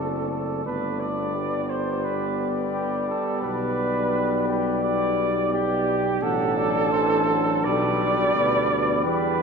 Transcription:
Already playing: tuba F#1, trombone A3, french horn C4, flugelhorn A4, trumpet D5
0.32 flugelhorn A4
0.65 tuba G1, french horn B3, flugelhorn B4, trumpet D5
1.00 flugelhorn D5
1.35 trombone G3
1.70 flugelhorn C5
2.04 flugelhorn B4
2.73 flugelhorn G4
3.09 flugelhorn A4
3.43 tuba B1, flugelhorn B4
4.48 flugelhorn G4
4.83 flugelhorn D5
5.54 flugelhorn G4
6.22 tuba A1, trombone F#3, french horn D4, flugelhorn A4, trumpet F#5
6.57 trumpet D5
6.92 trombone E3, trumpet C5
7.28 trombone F#3
7.64 tuba B1, trombone G3, trumpet B4, flugelhorn D5
8.35 tuba D2, french horn B3, trumpet B4
8.70 trumpet B4
9.05 tuba E2, trombone G3, flugelhorn B4

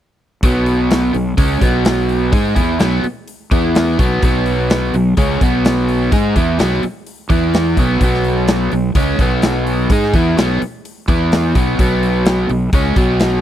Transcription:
0.43 fingered electric bass B1, overdriven electric guitar B2 F#3 B3, kick, open hi-hat
0.66 open hi-hat
0.91 snare, open hi-hat
1.14 fingered electric bass B1, overdriven electric guitar B2 F#3, open hi-hat
1.37 fingered electric bass C#2, overdriven electric guitar C#3 G#3 C#4, kick, open hi-hat
1.61 fingered electric bass B1, overdriven electric guitar B2 F#3 B3, kick, open hi-hat
1.85 snare, open hi-hat
2.09 open hi-hat
2.32 fingered electric bass G#2, overdriven electric guitar G#3 D#4 G#4, kick, open hi-hat
2.55 fingered electric bass E2, overdriven electric guitar E3 B3 E4, kick, open hi-hat
2.79 fingered electric bass B1, overdriven electric guitar B2 F#3 B3, snare, open hi-hat
3.04 muted fingered electric bass stroke, muted overdriven electric guitar stroke, open hi-hat
3.28 open hi-hat
3.51 fingered electric bass E2, overdriven electric guitar E3 B3 E4, kick, open hi-hat
3.75 snare, open hi-hat
3.99 fingered electric bass B1, overdriven electric guitar B2 F#3 B3, kick, open hi-hat
4.22 fingered electric bass B1, overdriven electric guitar B2 F#3 B3, kick, open hi-hat
4.46 open hi-hat
4.70 snare, open hi-hat
4.94 fingered electric bass B1, overdriven electric guitar B2 F#3, open hi-hat
5.17 fingered electric bass C#2, overdriven electric guitar C#3 G#3 C#4, kick, open hi-hat
5.41 fingered electric bass B1, overdriven electric guitar B2 F#3 B3, kick, open hi-hat
5.65 snare, open hi-hat
5.88 open hi-hat
6.12 fingered electric bass G#2, overdriven electric guitar G#3 D#4 G#4, kick, open hi-hat
6.36 fingered electric bass E2, overdriven electric guitar E3 B3 E4, kick, open hi-hat
6.59 fingered electric bass B1, overdriven electric guitar B2 F#3 B3, snare, open hi-hat
6.83 muted overdriven electric guitar stroke, muted fingered electric bass stroke, open hi-hat
7.07 open hi-hat
7.30 fingered electric bass E2, overdriven electric guitar E3 B3 E4, kick, open hi-hat
7.54 snare, open hi-hat
7.77 fingered electric bass B1, overdriven electric guitar B2 F#3 B3, kick, open hi-hat
8.01 fingered electric bass B1, overdriven electric guitar B2 F#3 B3, kick, open hi-hat
8.14 snare
8.24 open hi-hat
8.48 snare, open hi-hat
8.72 fingered electric bass B1, overdriven electric guitar B2 F#3, open hi-hat
8.95 fingered electric bass C#2, overdriven electric guitar C#3 G#3 C#4, kick, open hi-hat
9.19 fingered electric bass B1, overdriven electric guitar B2 F#3 B3, kick, open hi-hat
9.42 snare, open hi-hat
9.67 open hi-hat
9.90 fingered electric bass G#2, overdriven electric guitar G#3 D#4 G#4, kick, open hi-hat
10.04 snare
10.14 fingered electric bass E2, overdriven electric guitar E3 B3 E4, kick, open hi-hat
10.37 fingered electric bass B1, overdriven electric guitar B2 F#3 B3, snare, open hi-hat
10.62 muted overdriven electric guitar stroke, open hi-hat
10.85 open hi-hat
11.08 fingered electric bass E2, overdriven electric guitar E3 B3 E4, kick, open hi-hat
11.32 snare, open hi-hat
11.55 fingered electric bass B1, overdriven electric guitar B2 F#3 B3, kick, open hi-hat
11.79 fingered electric bass B1, overdriven electric guitar B2 F#3 B3, kick, open hi-hat
12.03 open hi-hat
12.26 snare, open hi-hat
12.49 fingered electric bass B1, overdriven electric guitar B2 F#3, open hi-hat
12.73 fingered electric bass C#2, overdriven electric guitar C#3 G#3 C#4, kick, open hi-hat
12.96 fingered electric bass B1, overdriven electric guitar B2 F#3 B3, kick, open hi-hat
13.20 snare, open hi-hat

